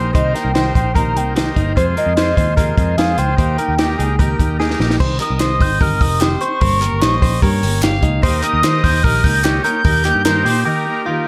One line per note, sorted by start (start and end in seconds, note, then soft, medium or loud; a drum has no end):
0.00 0.12 A#1 medium
0.00 0.12 A#3 soft
0.00 0.11 D#4 medium
0.00 0.13 D#4 medium
0.00 0.13 G4 medium
0.00 0.11 A#4 medium
0.00 0.12 C5 medium
0.00 0.14 C5 medium
0.13 0.32 C2 loud
0.13 0.34 C3 medium
0.13 0.34 D#3 medium
0.13 0.34 A#3 medium
0.13 0.51 D#4 medium
0.13 0.34 D#4 medium
0.13 0.32 G4 medium
0.13 0.51 A#4 medium
0.13 0.52 C5 loud
0.13 0.34 C5 loud
0.13 0.33 D#5 medium
0.13 kick loud
0.13 closed hi-hat medium
0.33 0.54 A#3 soft
0.33 0.55 D#4 soft
0.33 0.54 G4 medium
0.33 0.55 A#4 medium
0.33 0.73 G5 loud
0.33 snare soft
0.33 closed hi-hat medium
0.45 0.71 C2 medium
0.54 0.75 D#3 medium
0.54 0.75 A#3 medium
0.54 0.91 D#4 medium
0.54 0.74 D#4 medium
0.54 0.73 G4 medium
0.54 0.92 A#4 medium
0.54 0.74 C5 medium
0.54 0.92 C5 medium
0.54 snare loud
0.54 closed hi-hat medium
0.74 1.16 A#1 medium
0.74 0.95 A#3 soft
0.74 0.95 D#4 soft
0.74 0.95 G4 soft
0.74 0.95 C5 medium
0.74 0.95 G5 loud
0.74 kick medium
0.74 closed hi-hat medium
0.94 1.16 C3 medium
0.94 1.16 D#3 medium
0.94 1.16 A#3 medium
0.94 1.13 D#4 medium
0.94 1.15 D#4 medium
0.94 1.14 G4 medium
0.94 1.13 A#4 medium
0.94 1.33 A#4 medium
0.94 1.14 C5 medium
0.94 1.18 A#5 loud
0.94 kick medium
0.94 closed hi-hat medium
1.14 1.50 C2 medium
1.14 1.35 A#3 soft
1.14 1.33 D#4 medium
1.14 1.36 D#4 soft
1.14 1.36 G4 medium
1.14 1.34 A#4 medium
1.14 1.34 C5 medium
1.14 1.37 G5 medium
1.14 closed hi-hat medium
1.35 1.56 D#3 medium
1.35 1.56 A#3 medium
1.35 1.72 D#4 medium
1.35 1.56 D#4 medium
1.35 1.56 G4 medium
1.35 1.54 G4 medium
1.35 1.73 A#4 medium
1.35 1.73 C5 medium
1.35 snare loud
1.35 closed hi-hat medium
1.55 1.74 G1 medium
1.55 1.77 A#3 soft
1.55 1.77 D#4 medium
1.55 1.76 G4 medium
1.55 kick medium
1.55 closed hi-hat medium
1.75 1.96 F2 medium
1.75 1.94 F2 loud
1.75 1.97 C3 medium
1.75 1.97 F3 medium
1.75 1.97 G#3 medium
1.75 1.96 C4 medium
1.75 2.13 F4 medium
1.75 2.14 G#4 medium
1.75 1.95 G#4 medium
1.75 1.86 C5 medium
1.75 2.14 C5 loud
1.75 1.97 C5 loud
1.75 kick loud
1.75 closed hi-hat medium
1.97 2.15 F3 soft
1.97 2.17 G#3 soft
1.97 2.17 C4 soft
1.97 2.17 G#4 medium
1.97 2.17 A#4 medium
1.97 2.35 D#5 medium
1.97 closed hi-hat medium
2.06 2.32 F2 medium
2.16 2.37 F3 medium
2.16 2.38 G#3 medium
2.16 2.37 C4 medium
2.16 2.54 F4 medium
2.16 2.54 G#4 medium
2.16 2.35 G#4 medium
2.16 2.36 C5 medium
2.16 2.55 C5 medium
2.16 snare loud
2.16 closed hi-hat medium
2.37 2.72 D#2 medium
2.37 2.56 F3 soft
2.37 2.57 G#3 soft
2.37 2.57 C4 soft
2.37 2.57 G#4 soft
2.37 2.57 C5 medium
2.37 2.99 D#5 loud
2.37 kick medium
2.37 closed hi-hat medium
2.56 2.77 F2 medium
2.56 2.77 C3 medium
2.56 2.78 F3 medium
2.56 2.78 G#3 medium
2.56 2.77 C4 medium
2.56 2.75 F4 medium
2.56 2.76 G#4 medium
2.56 2.95 A#4 medium
2.56 2.76 C5 medium
2.56 kick medium
2.56 closed hi-hat medium
2.77 2.95 F2 medium
2.77 2.97 F3 soft
2.77 2.98 G#3 soft
2.77 2.98 C4 medium
2.77 2.96 F4 medium
2.77 2.96 G#4 medium
2.77 2.98 G#4 soft
2.77 2.96 C5 medium
2.77 kick medium
2.77 closed hi-hat medium
2.97 3.15 F2 medium
2.97 3.18 F3 medium
2.97 3.19 G#3 medium
2.97 3.17 C4 medium
2.97 3.35 F4 medium
2.97 3.18 G#4 medium
2.97 3.35 G#4 medium
2.97 3.16 G#4 medium
2.97 3.35 C5 medium
2.97 3.20 F5 loud
2.97 snare loud
2.97 closed hi-hat medium
3.17 3.35 C#2 medium
3.17 3.37 F3 soft
3.17 3.38 G#3 soft
3.17 3.38 C4 soft
3.17 3.38 G#4 medium
3.17 3.37 C5 medium
3.17 4.60 G5 loud
3.17 closed hi-hat medium
3.37 3.56 D#2 loud
3.37 3.58 D#3 medium
3.37 3.58 A#3 medium
3.37 3.74 D#4 medium
3.37 3.59 D#4 medium
3.37 3.75 G4 medium
3.37 3.57 G4 medium
3.37 3.75 A#4 loud
3.37 3.58 C5 medium
3.37 kick loud
3.37 closed hi-hat medium
3.58 3.78 A#3 soft
3.58 3.79 D#4 soft
3.58 3.79 G4 medium
3.58 3.78 A#4 medium
3.58 closed hi-hat medium
3.69 3.94 D#2 medium
3.78 3.98 D#3 medium
3.78 3.99 A#3 medium
3.78 4.15 D#4 medium
3.78 3.98 D#4 medium
3.78 4.16 G4 medium
3.78 3.98 G4 medium
3.78 3.97 G4 medium
3.78 4.16 A#4 loud
3.78 snare loud
3.78 closed hi-hat medium
3.98 4.33 C#2 medium
3.98 4.18 A#3 soft
3.98 4.19 D#4 soft
3.98 4.19 G4 medium
3.98 4.19 G#4 medium
3.98 closed hi-hat medium
4.19 4.39 D#3 medium
4.19 4.40 A#3 medium
4.19 4.36 D#4 medium
4.19 4.40 D#4 medium
4.19 4.37 G4 medium
4.19 4.38 G4 medium
4.19 4.57 A#4 medium
4.19 4.38 A#4 medium
4.19 kick medium
4.19 closed hi-hat medium
4.37 4.74 D#2 medium
4.37 4.57 D#4 medium
4.37 4.60 D#4 soft
4.37 4.57 G4 medium
4.37 4.59 G4 medium
4.37 4.58 A#4 medium
4.37 kick medium
4.37 closed hi-hat medium
4.42 4.59 A#3 soft
4.58 4.80 D#3 medium
4.58 4.80 A#3 medium
4.58 4.96 D#4 medium
4.58 4.79 D#4 medium
4.58 4.96 G4 medium
4.58 4.80 G#4 medium
4.58 4.97 A#4 medium
4.58 snare medium
4.62 4.78 G4 medium
4.70 snare medium
4.80 4.97 A#1 medium
4.80 5.00 A#3 soft
4.80 4.99 D#4 medium
4.80 5.00 G4 medium
4.80 snare medium
4.91 snare medium
4.99 5.17 C2 loud
4.99 5.20 C3 medium
4.99 5.20 D#3 medium
4.99 5.20 C4 medium
4.99 5.20 D#4 medium
4.99 5.18 G4 loud
4.99 5.20 C5 loud
4.99 6.23 D#5 loud
4.99 kick loud
4.99 crash loud
5.19 5.38 C4 soft
5.19 5.40 D#4 medium
5.19 5.40 G4 medium
5.19 5.40 A#4 medium
5.19 5.63 D#6 loud
5.19 snare soft
5.19 clap medium
5.19 hi-hat pedal medium
5.19 open hi-hat medium
5.30 5.62 C2 medium
5.39 5.60 D#3 medium
5.39 5.60 C4 medium
5.39 5.59 D#4 medium
5.39 5.57 G4 medium
5.39 5.60 C5 medium
5.39 snare loud
5.39 clap medium
5.39 hi-hat pedal medium
5.39 open hi-hat medium
5.59 5.78 G#1 medium
5.59 5.79 C4 soft
5.59 5.80 D#4 soft
5.59 5.80 G4 soft
5.59 5.80 C5 medium
5.59 5.83 G6 loud
5.59 kick medium
5.59 hi-hat pedal medium
5.59 open hi-hat medium
5.79 5.98 G1 medium
5.79 6.00 C3 medium
5.79 6.00 D#3 medium
5.79 6.01 C4 medium
5.79 6.00 D#4 medium
5.79 5.98 G4 medium
5.79 6.19 A#4 medium
5.79 6.03 F6 loud
5.79 kick medium
5.79 hi-hat pedal medium
5.79 open hi-hat medium
5.99 6.35 F1 medium
5.99 6.20 C4 soft
5.99 6.20 D#4 medium
5.99 6.20 G4 soft
5.99 6.40 D#6 loud
5.99 kick medium
5.99 hi-hat pedal medium
5.99 open hi-hat medium
6.20 6.41 D#3 medium
6.20 6.41 C4 medium
6.20 6.40 D#4 medium
6.20 6.41 G4 medium
6.20 6.39 G4 medium
6.20 6.62 C5 medium
6.20 snare loud
6.20 clap medium
6.20 hi-hat pedal medium
6.20 open hi-hat medium
6.40 6.61 C4 soft
6.40 6.61 D#4 soft
6.40 6.61 G4 medium
6.40 6.60 C5 medium
6.40 7.99 C#6 medium
6.40 hi-hat pedal medium
6.40 open hi-hat medium
6.61 6.87 G1 loud
6.61 6.81 G3 medium
6.61 6.82 A#3 medium
6.61 6.81 C#4 medium
6.61 6.80 G4 medium
6.61 7.03 A#4 medium
6.61 6.81 C5 loud
6.61 kick loud
6.61 hi-hat pedal medium
6.61 open hi-hat medium
6.81 7.01 A#3 soft
6.81 7.01 C#4 soft
6.81 7.02 G4 medium
6.81 7.02 A#4 medium
6.81 clap medium
6.81 hi-hat pedal medium
6.81 open hi-hat medium
6.92 7.01 G1 medium
7.01 7.19 A#1 medium
7.01 7.22 G3 medium
7.01 7.22 A#3 medium
7.01 7.22 C#4 medium
7.01 7.20 G4 medium
7.01 7.21 C5 medium
7.01 7.44 D#5 loud
7.01 snare loud
7.01 clap medium
7.01 hi-hat pedal medium
7.01 open hi-hat medium
7.21 7.39 A#1 medium
7.21 7.41 A#3 soft
7.21 7.41 C#4 medium
7.21 7.42 G4 medium
7.21 7.42 C5 medium
7.21 kick medium
7.21 hi-hat pedal medium
7.21 open hi-hat medium
7.41 7.60 G2 loud
7.41 7.62 G3 medium
7.41 7.62 A#3 medium
7.41 7.63 C#4 medium
7.41 7.61 G4 medium
7.41 7.81 A#4 medium
7.41 7.82 C#5 medium
7.41 kick medium
7.41 hi-hat pedal medium
7.41 open hi-hat medium
7.62 7.80 G1 medium
7.62 7.82 A#3 soft
7.62 7.83 C#4 medium
7.62 7.83 G4 medium
7.62 hi-hat pedal medium
7.62 open hi-hat medium
7.82 8.00 G1 loud
7.82 8.03 G3 medium
7.82 8.03 A#3 medium
7.82 8.03 C#4 medium
7.82 8.03 G4 medium
7.82 8.01 G4 medium
7.82 8.24 F5 loud
7.82 snare loud
7.82 clap loud
7.82 hi-hat pedal medium
7.82 open hi-hat medium
8.02 8.20 C#2 medium
8.02 8.22 A#3 medium
8.02 8.23 C#4 medium
8.02 8.23 D#4 medium
8.02 8.23 G4 medium
8.02 kick medium
8.02 hi-hat pedal medium
8.02 open hi-hat medium
8.22 8.40 D#2 loud
8.22 8.43 D#3 medium
8.22 8.43 A#3 medium
8.22 8.60 D#4 medium
8.22 8.43 D#4 loud
8.22 8.60 G4 medium
8.22 8.41 G4 loud
8.22 8.61 A#4 loud
8.22 8.43 C5 loud
8.22 9.98 D#5 loud
8.22 kick loud
8.22 hi-hat pedal medium
8.22 open hi-hat medium
8.43 8.62 A#3 soft
8.43 8.63 D#4 medium
8.43 8.63 G4 medium
8.43 8.64 A#4 medium
8.43 8.85 D#6 loud
8.43 clap medium
8.43 hi-hat pedal medium
8.43 open hi-hat medium
8.54 8.62 D#2 medium
8.62 8.83 D#3 medium
8.62 8.81 D#3 loud
8.62 8.84 A#3 medium
8.62 9.00 D#4 medium
8.62 8.84 D#4 medium
8.62 9.01 G4 medium
8.62 8.82 G4 medium
8.62 9.01 A#4 medium
8.62 8.83 C5 medium
8.62 snare loud
8.62 clap loud
8.62 hi-hat pedal medium
8.62 open hi-hat medium
8.83 9.01 D#2 medium
8.83 9.03 A#3 soft
8.83 9.04 D#4 soft
8.83 9.04 G4 medium
8.83 9.04 C5 medium
8.83 9.05 G6 loud
8.83 kick medium
8.83 hi-hat pedal medium
8.83 open hi-hat medium
9.03 9.21 A#1 medium
9.03 9.24 D#3 medium
9.03 9.25 A#3 medium
9.03 9.41 D#4 medium
9.03 9.24 D#4 medium
9.03 9.41 G4 medium
9.03 9.22 G4 medium
9.03 9.42 A#4 medium
9.03 9.25 F6 loud
9.03 kick medium
9.03 hi-hat pedal medium
9.03 open hi-hat medium
9.23 9.59 C#2 loud
9.23 9.43 A#3 soft
9.23 9.44 D#4 medium
9.23 9.44 G4 medium
9.23 9.63 G6 loud
9.23 kick loud
9.23 hi-hat pedal medium
9.23 open hi-hat medium
9.43 9.64 D#3 medium
9.43 9.64 A#3 medium
9.43 9.81 D#4 medium
9.43 9.64 D#4 medium
9.43 9.64 G4 medium
9.43 9.82 G4 medium
9.43 9.63 G4 medium
9.43 9.82 C#5 medium
9.43 snare loud
9.43 clap medium
9.43 hi-hat pedal medium
9.43 open hi-hat medium
9.64 9.84 A#3 medium
9.64 9.84 D#4 medium
9.64 9.85 G4 medium
9.64 9.84 A#4 medium
9.64 11.22 G6 loud
9.64 hi-hat pedal medium
9.64 open hi-hat medium
9.84 10.11 D#2 loud
9.84 10.05 D#3 medium
9.84 10.05 A#3 medium
9.84 10.22 D#4 medium
9.84 10.05 D#4 medium
9.84 10.22 G4 medium
9.84 10.04 G4 loud
9.84 10.05 A#4 loud
9.84 10.23 A#4 medium
9.84 kick loud
9.84 hi-hat pedal medium
9.84 open hi-hat loud
10.05 10.25 A#3 soft
10.05 10.26 D#4 medium
10.05 10.25 G4 medium
10.05 snare soft
10.05 clap medium
10.05 hi-hat pedal medium
10.05 open hi-hat medium
10.15 10.24 G2 medium
10.24 10.43 G2 medium
10.24 10.46 D#3 medium
10.24 10.46 A#3 medium
10.24 10.62 D#4 loud
10.24 10.46 D#4 medium
10.24 10.63 G4 medium
10.24 10.44 G4 medium
10.24 10.47 A#4 medium
10.24 10.45 A#4 medium
10.24 10.63 C5 loud
10.24 snare loud
10.24 clap medium
10.24 hi-hat pedal medium
10.24 open hi-hat medium
10.45 10.63 A#2 medium
10.45 10.65 A#3 medium
10.45 10.65 D#4 medium
10.45 10.64 G4 medium
10.45 10.66 G4 medium
10.45 10.67 C5 medium
10.45 hi-hat pedal medium
10.45 open hi-hat medium
10.65 10.86 D#3 medium
10.65 10.86 A#3 medium
10.65 11.02 D#4 medium
10.65 10.86 D#4 loud
10.65 11.04 G4 medium
10.65 11.03 G4 medium
10.65 10.84 G4 medium
10.65 11.26 A#4 medium
10.65 11.03 A#4 loud
10.86 11.06 A#3 soft
10.86 11.07 D#4 medium
10.86 11.06 G4 medium
11.05 11.27 D#3 medium
11.05 11.27 A#3 medium
11.05 11.28 D#4 medium
11.05 11.27 D#4 medium
11.05 11.26 F4 medium
11.05 11.28 G4 medium
11.05 11.28 A#4 loud
11.09 11.26 G4 medium